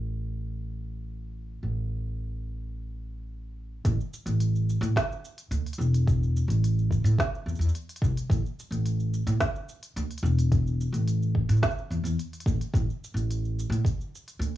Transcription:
Already playing: A1
1.63 A1
3.85 A1, kick, open hi-hat, cabasa
4.00 cabasa
4.13 cabasa
4.26 A1, open hi-hat, cabasa
4.40 open hi-hat, cabasa
4.55 cabasa
4.69 cabasa
4.81 A2, open hi-hat, cabasa
4.96 kick, snare, open hi-hat, cabasa
5.12 cabasa
5.25 cabasa
5.38 open hi-hat, cabasa
5.51 D2, open hi-hat, cabasa
5.66 open hi-hat, cabasa
5.73 open hi-hat
5.78 E1, cabasa
5.94 open hi-hat, cabasa
6.07 kick, open hi-hat, cabasa
6.23 cabasa
6.36 cabasa
6.48 A1, open hi-hat, cabasa
6.64 open hi-hat, cabasa
6.79 cabasa
6.91 kick, cabasa
7.04 A2, open hi-hat, cabasa
7.19 kick, snare, open hi-hat, cabasa
7.35 cabasa
7.46 E2, cabasa
7.55 E2, cabasa
7.61 open hi-hat, cabasa
7.69 cabasa
7.75 open hi-hat, cabasa
7.89 open hi-hat, cabasa
7.96 open hi-hat
8.02 C2, kick, cabasa
8.17 open hi-hat, cabasa
8.30 A1, kick, open hi-hat, cabasa
8.46 cabasa
8.59 cabasa
8.71 A1, open hi-hat, cabasa
8.86 open hi-hat, cabasa
9.00 cabasa
9.14 cabasa
9.27 A2, open hi-hat, cabasa
9.41 kick, snare, open hi-hat, cabasa
9.56 cabasa
9.69 cabasa
9.83 open hi-hat, cabasa
9.96 D2, open hi-hat, cabasa
10.11 open hi-hat, cabasa
10.18 open hi-hat
10.23 E1, cabasa
10.39 open hi-hat, cabasa
10.52 kick, open hi-hat, cabasa
10.67 cabasa
10.81 cabasa
10.93 A1, open hi-hat, cabasa
11.08 open hi-hat, cabasa
11.22 cabasa
11.35 kick
11.49 A2, open hi-hat, cabasa
11.57 cabasa
11.63 kick, snare, open hi-hat, cabasa
11.71 cabasa
11.78 cabasa
11.90 E2, open hi-hat
12.03 E2, open hi-hat, cabasa
12.19 open hi-hat, cabasa
12.33 open hi-hat, cabasa
12.40 open hi-hat
12.46 A1, kick, cabasa
12.61 open hi-hat, cabasa
12.73 A1, kick, open hi-hat, cabasa
12.90 cabasa
13.04 cabasa
13.14 A1, open hi-hat, cabasa
13.30 open hi-hat, cabasa
13.45 cabasa
13.59 cabasa
13.70 A2, open hi-hat, cabasa
13.85 kick, open hi-hat, cabasa
14.01 cabasa
14.15 cabasa
14.28 open hi-hat, cabasa
14.39 D2, open hi-hat, cabasa

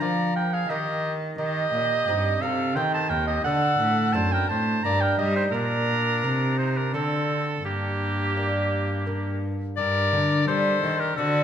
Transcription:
0.00 F3 A#3 F4 D5 A#5
0.35 A#4 G5
0.53 G#4 F5
0.69 D#3 A#3 D#4 G4 D#5
1.38 D#3 G4 D#5
1.73 A#2
2.08 G2 C4 D#4
2.41 C3 A4 F5
2.75 D#3 A3 C4 C5 G5
2.93 C5 A5
3.09 D#2 A#4 G5
3.27 G4 D#5
3.44 D3 A4 F#5
3.79 A2
4.13 F#2 A3 C4 D4 C5 A5
4.32 A#4 G5
4.48 A2 C5 A5
4.83 G2 A#3 D4 D5 A#5
5.00 A#4 G5
5.18 G3 G4 D#5
5.36 D#4 C5
5.52 A#2 D4 A#4
6.23 C3 C4 D#4
6.58 D#4 C5
6.77 D4 A#4
6.93 D3 C4 D4 A4
7.64 G2 A#3 G4
8.37 A#3 D4
9.07 A#3 D4
9.77 G2 A#4 D5
10.12 D3
10.47 G3 A#3 D4 A4 C5
10.83 D#3
10.99 G4 A#4
11.16 D3 C4 D4 F#4 A4

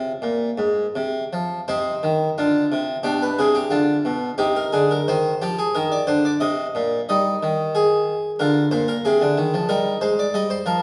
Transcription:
Already playing: C3 F4
0.22 A#2
0.58 G#2
0.95 C3
1.33 F3
1.68 C3 D#4 C5
2.03 D#3
2.38 D3 F4
2.72 C3
3.03 B2 D4 G4
3.22 B4
3.38 C3 G#4
3.55 G4
3.70 D3 F4
4.05 B2
4.38 C3 D#4 G4
4.56 A#4
4.72 D3 G#4
4.91 A#4
5.08 D#3 C5
5.42 F3 G4
5.59 G#4
5.75 D#3 A#4
5.92 D5
6.07 D3 C5
6.25 D5
6.40 C3 D#5
6.75 A#2
7.09 G3 D#4 D#5
7.43 D#3
7.75 G#4
8.39 D3 F4 A#4
8.71 A#2 C5
8.88 A#4
9.05 C3 G#4
9.22 D3
9.38 D#3
9.54 F3
9.69 G3 D#4 A#4
10.01 G#3 C5
10.19 D5
10.34 G3 D#5
10.50 C5
10.66 F3 A#4

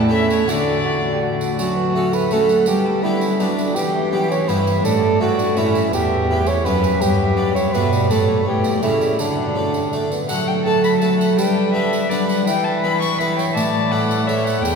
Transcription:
Already playing: A2 D4 E4
0.09 C#4 E4 A4 E5
0.14 E4
0.30 C#5, tambourine
0.45 D3 D4 F#4 A4 D5, tambourine
0.50 D3
0.86 F#4
1.14 G4
1.22 F#4
1.41 tambourine
1.58 F#3 C#4 F#4 A5, tambourine
1.76 B3
1.94 A3 C#4 F#4 A4 F#5
2.13 A3 B4, tambourine
2.30 A3 C#4 F#4 A4 E5, tambourine
2.49 F#5, tambourine
2.66 G3 B3 G4 G5, tambourine
2.85 A5
3.03 B3 D4 E4 G4 B5
3.21 C#4, tambourine
3.39 F#3 B3 D4 G5, tambourine
3.57 A3, tambourine
3.75 E3 B3 G4 G5, tambourine
3.92 G5
4.11 B3 C#4 E4 G4
4.31 C#5, tambourine
4.48 G2 B3 E4 G4 B4 E5, tambourine
4.67 tambourine
4.84 A2 D4 A4 D5, tambourine
5.20 A3 D4 E4 F#4 D5
5.38 D4, tambourine
5.55 A2 A3 C#4 E4 E5, tambourine
5.75 tambourine
5.92 E2 B3 G4 E5, tambourine
6.28 B3 E4 G5
6.46 C#5, tambourine
6.64 F#2 B3 C#4 E4 B4 F#5, tambourine
6.82 E5, tambourine
7.01 G2 B3 G4, tambourine
7.37 B3 D4 D5
7.55 C#5 E5, tambourine
7.73 B2 A3 B3 D4 B4, tambourine
7.92 G3, tambourine
8.10 A2 F#3 A3 D4 A4 D5, tambourine
8.28 C#5
8.46 A2 E3 G4 C#5
8.64 D5, tambourine
8.82 C#3 A3 C#4 E4 E5, tambourine
9.01 G3, tambourine
9.19 D3 F#3 D4 F#5, tambourine
9.56 F#3 A3 D4
9.74 G3, tambourine
9.93 A3 D4, tambourine
10.12 B3, tambourine
10.29 F#3 A3 A4 F#5, tambourine
10.48 G5
10.65 A3 A4 A5
10.84 B5, tambourine
11.01 A3 A4 A5, tambourine
11.19 F#5, tambourine
11.37 G3 D4 B4 G5, tambourine
11.74 B3 D4 B4 E5
11.93 tambourine
12.10 B3 D4 B4 D5, tambourine
12.29 F#5, tambourine
12.47 E3 E4 B4 G5, tambourine
12.64 A5
12.82 B3 E4 B4 B5
13.01 C#6, tambourine
13.18 B3 E4 B4 B5, tambourine
13.37 C#5 G5, tambourine
13.54 A2 E4 D5 A5, tambourine
13.91 D4 E4 A4 F#5
14.11 tambourine
14.27 C#4 E4 A4 C#5 E5, tambourine
14.44 F#5, tambourine
14.62 E2 E4 B4 G5, tambourine

